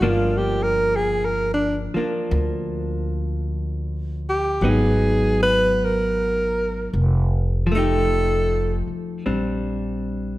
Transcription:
0.00 1.90 G1 medium
0.00 1.93 F3 medium
0.00 1.95 A#3 medium
0.00 1.96 D4 medium
0.00 0.11 F#4 loud
0.09 0.39 F4 medium
0.37 0.65 G4 medium
0.63 0.98 A#4 loud
0.96 1.27 G#4 medium
1.25 1.53 A#4 medium
1.54 1.78 D4 medium
1.94 4.62 F3 soft
1.94 4.63 A#3 soft
1.94 4.64 D4 soft
1.94 muted upright bass stroke soft
2.31 4.58 D2 loud
4.29 4.71 G4 medium
4.61 6.89 G#1 medium
4.61 6.94 F#3 medium
4.61 6.95 B3 medium
4.61 6.95 D#4 medium
4.69 5.42 G#4 medium
5.43 5.86 B4 loud
5.84 6.97 A#4 medium
6.93 8.84 F1 medium
7.67 9.25 F3 medium
7.72 9.25 A3 medium
7.72 8.86 A4 loud
7.76 9.26 D#4 medium
7.76 9.30 G4 medium
8.87 muted upright bass stroke soft
9.26 10.38 A#1 medium
9.26 10.38 G3 soft
9.26 10.38 C4 soft
9.26 10.38 D4 soft

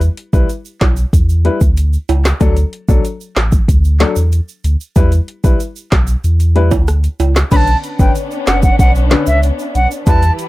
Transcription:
0.01 closed hi-hat medium
0.01 shaker medium
0.17 closed hi-hat medium
0.33 0.45 B1 medium
0.33 0.47 G3 medium
0.33 0.47 E4 medium
0.33 0.47 B4 medium
0.33 kick loud
0.33 shaker medium
0.49 closed hi-hat medium
0.49 shaker medium
0.65 shaker medium
0.81 1.06 B1 medium
0.81 kick medium
0.81 snare loud
0.81 clap loud
0.81 closed hi-hat medium
0.81 high timbale medium
0.96 shaker medium
1.13 1.49 E2 medium
1.13 kick medium
1.13 closed hi-hat medium
1.13 shaker medium
1.29 shaker medium
1.45 1.58 G3 medium
1.45 1.58 E4 medium
1.45 1.59 B4 medium
1.45 closed hi-hat medium
1.61 1.97 D2 medium
1.61 kick medium
1.61 shaker medium
1.77 closed hi-hat medium
1.77 shaker medium
1.93 shaker soft
2.09 2.33 C#2 medium
2.09 closed hi-hat medium
2.09 high timbale medium
2.09 shaker soft
2.25 snare loud
2.25 clap medium
2.25 shaker medium
2.40 2.65 D2 loud
2.40 2.54 F#3 medium
2.40 2.54 D4 medium
2.40 2.54 A4 loud
2.40 kick loud
2.40 closed hi-hat medium
2.40 shaker medium
2.57 closed hi-hat medium
2.57 shaker medium
2.73 closed hi-hat medium
2.89 3.01 B1 loud
2.89 3.02 F#3 medium
2.89 3.02 D4 medium
2.89 3.02 A4 medium
2.89 kick loud
2.89 shaker medium
3.05 closed hi-hat medium
3.05 shaker medium
3.21 shaker medium
3.36 3.61 A1 medium
3.36 snare loud
3.36 clap loud
3.36 closed hi-hat medium
3.52 kick medium
3.52 shaker medium
3.68 4.05 D2 loud
3.68 kick medium
3.68 closed hi-hat medium
3.68 shaker medium
3.85 shaker medium
4.00 4.14 F#3 medium
4.00 4.14 D4 medium
4.00 4.14 A4 medium
4.00 snare loud
4.00 clap medium
4.00 closed hi-hat medium
4.16 4.41 E2 medium
4.16 shaker medium
4.32 closed hi-hat medium
4.32 shaker medium
4.49 shaker soft
4.64 4.76 D2 medium
4.64 closed hi-hat medium
4.64 shaker medium
4.81 shaker medium
4.96 5.20 E2 loud
4.96 5.09 G3 medium
4.96 5.09 E4 medium
4.96 5.10 B4 loud
4.96 kick loud
4.96 closed hi-hat medium
4.96 shaker medium
5.12 closed hi-hat medium
5.12 shaker medium
5.28 closed hi-hat medium
5.44 5.56 B1 medium
5.44 5.57 G3 medium
5.44 5.57 E4 medium
5.44 5.58 B4 medium
5.44 kick loud
5.44 shaker medium
5.60 closed hi-hat medium
5.60 shaker medium
5.76 shaker medium
5.92 6.16 B1 medium
5.92 kick medium
5.92 snare loud
5.92 clap loud
5.92 closed hi-hat medium
6.07 shaker medium
6.24 6.74 E2 loud
6.24 closed hi-hat medium
6.24 shaker medium
6.40 closed hi-hat medium
6.40 shaker medium
6.56 6.69 G3 medium
6.56 6.69 E4 medium
6.56 6.69 B4 medium
6.56 closed hi-hat medium
6.71 7.08 D2 medium
6.71 kick loud
6.71 high timbale medium
6.71 shaker medium
6.88 cross-stick loud
6.88 closed hi-hat medium
6.88 shaker medium
7.04 closed hi-hat medium
7.04 shaker soft
7.20 7.44 C#2 loud
7.20 closed hi-hat medium
7.20 high timbale medium
7.20 shaker medium
7.36 snare loud
7.36 clap medium
7.36 shaker medium
7.51 7.76 B1 loud
7.51 7.65 D3 medium
7.51 10.04 B3 medium
7.51 10.04 C#4 medium
7.51 7.65 C#4 medium
7.51 10.04 D4 medium
7.51 7.65 B4 loud
7.51 7.57 B5 loud
7.51 kick loud
7.51 closed hi-hat medium
7.51 crash loud
7.51 shaker medium
7.56 7.77 A5 loud
7.67 closed hi-hat medium
7.67 shaker medium
7.84 closed hi-hat medium
7.84 shaker medium
7.99 8.11 G1 loud
7.99 8.13 D3 medium
7.99 8.13 C#4 medium
7.99 8.13 B4 medium
7.99 8.12 G5 medium
7.99 kick loud
7.99 shaker medium
8.15 closed hi-hat medium
8.15 shaker medium
8.31 shaker medium
8.47 8.71 F#1 medium
8.47 8.60 F#5 medium
8.47 snare loud
8.47 clap loud
8.47 closed hi-hat medium
8.47 shaker medium
8.62 8.76 F#5 medium
8.62 kick medium
8.62 shaker medium
8.79 9.15 B1 loud
8.79 8.92 F#5 loud
8.79 kick medium
8.79 closed hi-hat medium
8.79 shaker medium
8.95 shaker medium
9.11 9.24 D3 medium
9.11 9.25 C#4 medium
9.11 9.25 B4 medium
9.11 snare loud
9.11 clap loud
9.11 closed hi-hat medium
9.26 9.51 C#2 medium
9.26 9.40 E5 medium
9.26 shaker medium
9.43 closed hi-hat medium
9.43 shaker medium
9.59 shaker soft
9.75 9.87 B1 medium
9.75 9.88 F#5 medium
9.75 closed hi-hat medium
9.75 shaker medium
9.91 shaker medium
10.07 10.31 E2 loud
10.07 10.48 E3 medium
10.07 10.20 G3 medium
10.07 10.48 E4 medium
10.07 10.20 E4 medium
10.07 10.48 G4 medium
10.07 10.48 B4 medium
10.07 10.20 B4 loud
10.07 10.32 A5 loud
10.07 kick loud
10.07 closed hi-hat medium
10.07 shaker medium
10.22 closed hi-hat medium
10.22 shaker medium
10.39 closed hi-hat medium
10.39 shaker medium

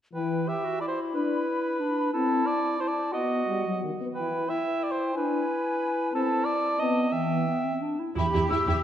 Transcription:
0.13 0.42 E3 soft
0.13 0.48 E4 soft
0.13 0.50 B4 medium
0.13 0.46 G5 soft
0.47 0.65 G4 soft
0.47 0.80 E5 medium
0.47 0.82 G5 soft
0.64 0.82 F#4 soft
0.80 1.81 E4 soft
0.80 0.85 D5 medium
0.80 1.80 B5 soft
0.88 0.99 C5 medium
1.13 1.41 D4 medium
1.13 2.11 B4 medium
1.80 2.12 D4 soft
1.80 2.12 B5 soft
2.12 2.41 C4 medium
2.12 2.75 E4 medium
2.12 2.48 A4 medium
2.12 2.75 A5 medium
2.46 2.82 D5 medium
2.78 3.14 E4 soft
2.78 2.89 C5 medium
2.78 3.13 A5 soft
2.88 3.13 D5 medium
3.12 3.41 B3 soft
3.12 3.98 F#4 soft
3.12 3.80 D#5 medium
3.12 3.97 F#5 soft
3.46 3.62 G3 medium
3.66 3.82 F#3 soft
3.83 3.90 D#3 soft
4.00 4.07 B3 soft
4.14 4.44 E3 soft
4.14 4.46 E4 soft
4.14 4.51 B4 medium
4.14 4.46 G5 soft
4.48 5.13 E4 soft
4.48 4.85 E5 medium
4.48 5.16 G5 soft
4.83 4.93 D5 medium
4.91 5.15 C5 medium
5.14 5.42 D4 medium
5.14 6.11 E4 soft
5.14 6.13 B4 medium
5.14 6.12 G#5 medium
6.11 6.40 C4 medium
6.11 6.78 E4 medium
6.11 6.46 A4 medium
6.11 6.77 A5 medium
6.45 6.80 D5 medium
6.78 7.07 B3 medium
6.78 7.15 C4 soft
6.78 7.14 D#5 medium
6.78 7.15 A5 soft
7.12 7.42 E3 soft
7.12 7.45 B3 soft
7.12 7.82 E5 medium
7.12 7.90 G5 soft
7.48 7.66 B3 soft
7.64 7.83 C4 soft
7.82 8.01 D4 soft
7.99 8.17 E4 soft
8.16 8.23 E2 medium
8.16 8.23 E4 soft
8.16 8.83 G4 medium
8.16 8.25 G4 soft
8.16 8.25 E5 soft
8.16 8.49 B5 medium
8.34 8.40 E2 soft
8.34 8.40 E4 soft
8.34 8.40 G4 soft
8.34 8.42 E5 soft
8.50 8.57 E2 medium
8.50 8.57 E4 soft
8.50 8.58 G4 soft
8.50 8.59 E5 soft
8.50 8.83 E6 medium
8.67 8.74 E2 medium
8.67 8.74 E4 soft
8.67 8.74 G4 soft
8.67 8.75 E5 soft

